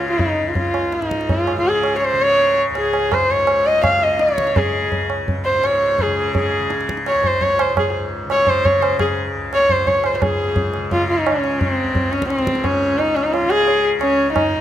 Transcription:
0.00 0.42 C#2 medium
0.00 1.00 G#2 medium
0.00 1.56 C#3 medium
0.10 0.21 F4 medium
0.19 0.50 D#4 medium
0.19 tabla tin medium
0.19 tabla ge medium
0.43 2.69 C#2 medium
0.48 0.57 F4 medium
0.55 0.95 F4 medium
0.55 tabla tin medium
0.55 tabla ge medium
0.74 tabla na medium
0.92 1.32 D#4 medium
0.92 tabla te medium
1.00 3.26 G#2 medium
1.00 tabla te medium
1.11 tabla ke medium
1.21 tabla te medium
1.29 1.57 F4 medium
1.29 tabla tin medium
1.29 tabla ge medium
1.47 tabla na medium
1.56 2.12 C#3 medium
1.56 1.69 F4 medium
1.65 1.97 G#4 medium
1.65 tabla tin medium
1.84 tabla na medium
1.98 2.06 C#5 medium
2.02 2.23 C5 medium
2.02 tabla tin medium
2.12 3.84 C#3 medium
2.22 2.57 C#5 loud
2.38 tabla tin medium
2.69 4.94 C#2 medium
2.75 3.14 G#4 medium
2.75 tabla na medium
2.94 tabla na medium
3.12 3.32 C5 medium
3.12 tabla na medium
3.12 tabla ge medium
3.26 5.50 G#2 medium
3.31 3.68 C#5 medium
3.47 tabla na medium
3.66 3.84 D#5 loud
3.84 4.38 C#3 soft
3.84 4.04 F5 medium
3.84 tabla na medium
3.84 tabla ge medium
4.03 4.23 D#5 medium
4.19 4.58 C#5 medium
4.19 tabla te medium
4.29 tabla te medium
4.38 6.05 C#3 medium
4.38 tabla ke medium
4.47 tabla te medium
4.56 5.10 G#4 medium
4.56 tabla tin medium
4.56 tabla ge medium
4.92 7.14 C#2 medium
4.92 tabla tin medium
4.92 tabla ge medium
5.10 tabla na medium
5.28 tabla tin medium
5.28 tabla ge medium
5.45 5.66 C5 medium
5.50 7.69 G#2 medium
5.64 6.03 C#5 medium
5.64 tabla na medium
5.98 6.36 G#4 medium
5.98 tabla tin medium
5.98 tabla ge medium
6.05 6.59 C#3 medium
6.35 6.85 G#4 medium
6.35 tabla tin medium
6.35 tabla ge medium
6.59 8.25 C#3 medium
6.70 tabla te medium
6.81 tabla te medium
6.89 tabla ke medium
6.97 tabla te medium
7.06 7.28 C#5 medium
7.06 tabla na medium
7.14 9.34 C#2 medium
7.24 7.44 C5 medium
7.24 tabla tin medium
7.24 tabla ge medium
7.41 7.62 C#5 medium
7.41 tabla tin medium
7.41 tabla ge medium
7.59 7.77 C5 medium
7.59 tabla na medium
7.70 9.87 G#2 medium
7.77 7.94 G#4 medium
7.77 tabla na medium
7.77 tabla ge medium
8.25 8.78 C#3 medium
8.30 8.50 C#5 medium
8.30 tabla na medium
8.47 8.67 C5 medium
8.47 tabla tin medium
8.47 tabla ge medium
8.65 8.84 C#5 medium
8.65 tabla tin medium
8.65 tabla ge medium
8.78 10.77 C#3 medium
8.82 8.99 C5 medium
8.82 tabla na medium
8.99 9.16 G#4 medium
8.99 tabla na medium
8.99 tabla ge medium
9.35 11.82 C#2 medium
9.53 9.73 C#5 loud
9.53 tabla na medium
9.69 9.89 C5 medium
9.69 tabla tin medium
9.69 tabla ge medium
9.87 10.23 G#2 medium
9.87 10.07 C#5 medium
9.87 tabla tin medium
9.87 tabla ge medium
10.04 10.16 C5 medium
10.04 tabla na medium
10.16 10.24 C5 medium
10.22 12.37 G#2 medium
10.22 10.75 G#4 medium
10.22 tabla tin loud
10.22 tabla ge medium
10.56 tabla tin medium
10.56 tabla ge medium
10.74 11.31 C#3 medium
10.74 tabla na medium
10.91 11.08 F4 medium
10.91 tabla tin medium
10.91 tabla ge medium
11.09 11.19 F4 medium
11.17 11.28 D#4 medium
11.27 11.62 C#4 medium
11.27 tabla na medium
11.31 12.92 C#3 medium
11.44 tabla na medium
11.61 12.13 C4 medium
11.61 tabla tin medium
11.61 tabla ge medium
11.83 13.97 C#2 medium
11.95 tabla tin medium
11.95 tabla ge medium
12.12 12.28 C#4 medium
12.12 tabla na medium
12.22 tabla ke medium
12.29 12.65 C4 medium
12.29 tabla te medium
12.37 14.50 G#2 medium
12.37 tabla te medium
12.47 tabla ke medium
12.55 tabla te medium
12.63 13.00 C#4 medium
12.63 tabla tin medium
12.63 tabla ge medium
12.92 13.43 C#3 medium
12.98 13.17 D#4 medium
12.98 tabla tin medium
13.15 13.25 C#4 medium
13.15 tabla na medium
13.24 13.34 D#4 medium
13.33 13.51 F4 medium
13.33 tabla tin medium
13.43 14.61 C#3 medium
13.50 13.84 G#4 loud
13.50 tabla na medium
13.68 tabla tin medium
13.98 14.61 C#2 medium
13.98 14.33 C#4 medium
13.98 tabla na medium
14.33 14.61 D#4 medium
14.33 tabla na medium
14.33 tabla ge medium
14.51 14.61 G#2 medium

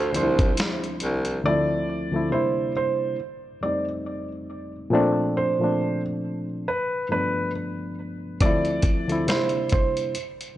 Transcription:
0.00 0.18 D2 loud
0.00 1.42 F3 medium
0.00 1.43 D4 medium
0.00 1.43 E4 medium
0.00 0.11 C5 medium
0.00 1.43 C5 medium
0.12 1.25 D2 medium
0.12 1.26 F3 medium
0.12 1.26 A3 medium
0.12 1.27 C4 medium
0.12 0.55 C5 medium
0.12 closed hi-hat medium
0.16 0.52 C2 medium
0.16 0.23 D4 medium
0.23 1.31 E4 medium
0.39 kick loud
0.39 closed hi-hat soft
0.57 snare loud
0.57 closed hi-hat medium
0.84 closed hi-hat soft
1.00 1.39 C2 medium
1.00 closed hi-hat medium
1.25 closed hi-hat soft
1.44 2.00 D2 medium
1.44 2.01 F3 medium
1.44 2.02 A3 medium
1.44 2.02 C4 medium
1.44 2.02 E4 loud
1.44 2.28 D5 loud
2.12 2.31 D2 medium
2.12 2.32 F3 medium
2.12 2.32 A3 medium
2.12 2.33 C4 medium
2.16 2.33 E4 medium
2.30 3.06 C3 medium
2.30 3.06 G3 medium
2.30 3.07 A#3 medium
2.30 3.07 D4 medium
2.30 2.71 C5 medium
2.35 3.08 E4 medium
2.77 3.15 C5 medium
3.61 4.74 F2 medium
3.61 4.74 G3 medium
3.61 4.75 A3 medium
3.61 4.75 C4 medium
3.61 3.84 D5 medium
3.66 4.76 D#4 medium
4.90 5.47 A#2 loud
4.90 5.48 F3 medium
4.90 5.49 A3 loud
4.90 5.49 C4 loud
4.95 5.50 D4 loud
5.37 6.00 C5 medium
5.59 6.66 A#2 medium
5.59 6.67 F3 medium
5.59 6.67 A3 medium
5.63 6.68 C4 medium
5.63 6.68 D4 medium
6.68 7.07 B4 medium
7.09 8.21 G2 medium
7.09 8.22 F3 medium
7.09 8.23 A3 medium
7.09 8.23 B3 medium
7.09 7.50 B4 medium
7.13 8.24 D4 medium
8.40 8.97 D2 loud
8.40 8.97 F3 medium
8.40 8.98 A3 medium
8.40 8.98 C4 medium
8.40 9.24 D5 loud
8.40 kick medium
8.40 closed hi-hat medium
8.46 8.99 E4 loud
8.65 closed hi-hat soft
8.82 kick medium
8.82 closed hi-hat medium
9.07 9.27 D2 medium
9.07 9.27 F3 medium
9.07 9.28 A3 medium
9.07 9.29 C4 medium
9.07 closed hi-hat soft
9.12 9.29 E4 medium
9.26 10.02 C3 medium
9.26 10.02 G3 medium
9.26 10.02 A#3 medium
9.26 10.03 D4 medium
9.26 9.67 C5 medium
9.26 snare medium
9.26 closed hi-hat medium
9.31 10.04 E4 medium
9.49 closed hi-hat soft
9.69 10.11 C5 medium
9.69 kick medium
9.69 closed hi-hat medium
9.97 closed hi-hat soft
10.15 closed hi-hat medium
10.41 closed hi-hat soft

